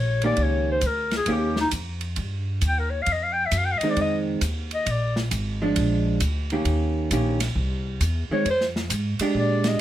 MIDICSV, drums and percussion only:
0, 0, Header, 1, 2, 480
1, 0, Start_track
1, 0, Tempo, 448430
1, 1360, Time_signature, 4, 2, 24, 8
1, 10498, End_track
2, 0, Start_track
2, 0, Title_t, "Drums"
2, 230, Note_on_c, 9, 51, 49
2, 337, Note_off_c, 9, 51, 0
2, 391, Note_on_c, 9, 51, 54
2, 399, Note_on_c, 9, 36, 18
2, 498, Note_off_c, 9, 51, 0
2, 506, Note_off_c, 9, 36, 0
2, 869, Note_on_c, 9, 44, 55
2, 869, Note_on_c, 9, 51, 57
2, 880, Note_on_c, 9, 36, 24
2, 976, Note_off_c, 9, 44, 0
2, 976, Note_off_c, 9, 51, 0
2, 987, Note_off_c, 9, 36, 0
2, 1191, Note_on_c, 9, 51, 41
2, 1196, Note_on_c, 9, 38, 48
2, 1298, Note_off_c, 9, 51, 0
2, 1303, Note_off_c, 9, 38, 0
2, 1347, Note_on_c, 9, 51, 60
2, 1360, Note_on_c, 9, 36, 25
2, 1454, Note_off_c, 9, 51, 0
2, 1467, Note_off_c, 9, 36, 0
2, 1673, Note_on_c, 9, 38, 55
2, 1780, Note_off_c, 9, 38, 0
2, 1833, Note_on_c, 9, 44, 47
2, 1833, Note_on_c, 9, 51, 68
2, 1842, Note_on_c, 9, 36, 22
2, 1940, Note_off_c, 9, 44, 0
2, 1940, Note_off_c, 9, 51, 0
2, 1949, Note_off_c, 9, 36, 0
2, 2148, Note_on_c, 9, 51, 45
2, 2255, Note_off_c, 9, 51, 0
2, 2313, Note_on_c, 9, 51, 54
2, 2324, Note_on_c, 9, 36, 18
2, 2420, Note_off_c, 9, 51, 0
2, 2431, Note_off_c, 9, 36, 0
2, 2797, Note_on_c, 9, 44, 46
2, 2797, Note_on_c, 9, 51, 59
2, 2805, Note_on_c, 9, 36, 25
2, 2904, Note_off_c, 9, 44, 0
2, 2904, Note_off_c, 9, 51, 0
2, 2912, Note_off_c, 9, 36, 0
2, 3278, Note_on_c, 9, 51, 58
2, 3286, Note_on_c, 9, 36, 24
2, 3385, Note_off_c, 9, 51, 0
2, 3393, Note_off_c, 9, 36, 0
2, 3761, Note_on_c, 9, 44, 62
2, 3761, Note_on_c, 9, 51, 66
2, 3766, Note_on_c, 9, 36, 18
2, 3868, Note_off_c, 9, 44, 0
2, 3868, Note_off_c, 9, 51, 0
2, 3873, Note_off_c, 9, 36, 0
2, 4076, Note_on_c, 9, 51, 54
2, 4183, Note_off_c, 9, 51, 0
2, 4244, Note_on_c, 9, 51, 56
2, 4248, Note_on_c, 9, 36, 19
2, 4351, Note_off_c, 9, 51, 0
2, 4355, Note_off_c, 9, 36, 0
2, 4723, Note_on_c, 9, 44, 61
2, 4723, Note_on_c, 9, 51, 69
2, 4727, Note_on_c, 9, 36, 23
2, 4830, Note_off_c, 9, 44, 0
2, 4830, Note_off_c, 9, 51, 0
2, 4834, Note_off_c, 9, 36, 0
2, 5040, Note_on_c, 9, 51, 46
2, 5147, Note_off_c, 9, 51, 0
2, 5206, Note_on_c, 9, 51, 64
2, 5209, Note_on_c, 9, 36, 19
2, 5313, Note_off_c, 9, 51, 0
2, 5316, Note_off_c, 9, 36, 0
2, 5526, Note_on_c, 9, 38, 52
2, 5633, Note_off_c, 9, 38, 0
2, 5685, Note_on_c, 9, 44, 50
2, 5685, Note_on_c, 9, 51, 69
2, 5688, Note_on_c, 9, 36, 25
2, 5792, Note_off_c, 9, 44, 0
2, 5792, Note_off_c, 9, 51, 0
2, 5795, Note_off_c, 9, 36, 0
2, 6164, Note_on_c, 9, 51, 70
2, 6168, Note_on_c, 9, 36, 27
2, 6271, Note_off_c, 9, 51, 0
2, 6275, Note_off_c, 9, 36, 0
2, 6640, Note_on_c, 9, 44, 55
2, 6640, Note_on_c, 9, 51, 69
2, 6647, Note_on_c, 9, 36, 20
2, 6747, Note_off_c, 9, 44, 0
2, 6747, Note_off_c, 9, 51, 0
2, 6754, Note_off_c, 9, 36, 0
2, 6958, Note_on_c, 9, 51, 38
2, 7065, Note_off_c, 9, 51, 0
2, 7120, Note_on_c, 9, 51, 60
2, 7128, Note_on_c, 9, 36, 24
2, 7227, Note_off_c, 9, 51, 0
2, 7235, Note_off_c, 9, 36, 0
2, 7608, Note_on_c, 9, 44, 57
2, 7608, Note_on_c, 9, 51, 67
2, 7610, Note_on_c, 9, 36, 25
2, 7715, Note_off_c, 9, 44, 0
2, 7715, Note_off_c, 9, 51, 0
2, 7717, Note_off_c, 9, 36, 0
2, 7923, Note_on_c, 9, 51, 78
2, 7929, Note_on_c, 9, 38, 35
2, 8030, Note_off_c, 9, 51, 0
2, 8036, Note_off_c, 9, 38, 0
2, 8090, Note_on_c, 9, 36, 23
2, 8197, Note_off_c, 9, 36, 0
2, 8570, Note_on_c, 9, 36, 21
2, 8570, Note_on_c, 9, 44, 60
2, 8570, Note_on_c, 9, 51, 65
2, 8677, Note_off_c, 9, 44, 0
2, 8677, Note_off_c, 9, 51, 0
2, 8678, Note_off_c, 9, 36, 0
2, 9051, Note_on_c, 9, 51, 59
2, 9052, Note_on_c, 9, 36, 21
2, 9158, Note_off_c, 9, 51, 0
2, 9159, Note_off_c, 9, 36, 0
2, 9215, Note_on_c, 9, 38, 31
2, 9322, Note_off_c, 9, 38, 0
2, 9377, Note_on_c, 9, 38, 48
2, 9484, Note_off_c, 9, 38, 0
2, 9527, Note_on_c, 9, 44, 63
2, 9527, Note_on_c, 9, 51, 67
2, 9530, Note_on_c, 9, 36, 20
2, 9634, Note_off_c, 9, 44, 0
2, 9634, Note_off_c, 9, 51, 0
2, 9637, Note_off_c, 9, 36, 0
2, 9840, Note_on_c, 9, 51, 75
2, 9947, Note_off_c, 9, 51, 0
2, 10008, Note_on_c, 9, 36, 23
2, 10115, Note_off_c, 9, 36, 0
2, 10318, Note_on_c, 9, 51, 46
2, 10323, Note_on_c, 9, 38, 59
2, 10425, Note_off_c, 9, 51, 0
2, 10430, Note_off_c, 9, 38, 0
2, 10498, End_track
0, 0, End_of_file